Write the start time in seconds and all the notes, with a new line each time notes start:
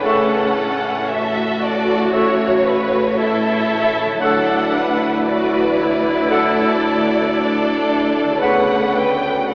Already playing: A2 C#3 E4
0.01 C#3 A4 C#6
0.05 A1 A2 A3 C#4 A4 E5 F#5
1.09 F#4 A4 E5
1.63 D5
2.13 A4 C#5 E5 C#6
2.65 B4
3.18 E4 A4 E5
4.05 D3
4.09 E4
4.14 F#3
4.18 F#3 A4 F#5
4.22 D2 D4 E4 A4 F#5 E6
4.74 B4
5.26 F#4 B4 D5
5.78 E4
6.29 A4 F#5 E6
7.35 D4 A4
8.25 D3
8.29 C#3
8.38 B4 F#5
8.42 D2 D3 B3 C#4 B4 F#5 C#6
8.97 G5
9.48 F#4 B4 F#5